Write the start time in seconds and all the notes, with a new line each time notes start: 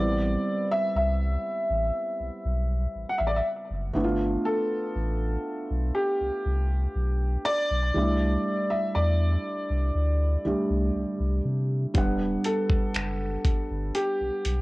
Already playing: A1 G3 B3 C4 E4 D5
0.71 E5
0.95 C2 E5
1.70 A1
2.20 B1
2.45 B1
2.95 A1
3.09 F#5
3.18 A1 E5
3.27 D5
3.36 E5
3.70 F#1
3.94 G1 A3 B3 D4 E4
4.04 F4
4.45 A4
4.96 A1
5.70 B1
5.95 G4
6.21 C2
6.46 C2
6.95 B1
7.45 D5
7.71 B1
7.94 C2 G3 A3 D4 E4
8.70 E5
8.95 E2 D5
9.70 C2
9.95 D2
10.45 C2 G3 A3 D4 G4
10.70 C2
10.95 C2
11.20 C2
11.45 C3
11.94 E1 G3 B3 D4 F#5, kick, closed hi-hat
12.44 A4, closed hi-hat
12.70 kick
12.94 F#1, finger snap, closed hi-hat
13.45 kick, closed hi-hat
13.71 G1
13.95 G4, closed hi-hat
14.21 B1
14.45 B1, closed hi-hat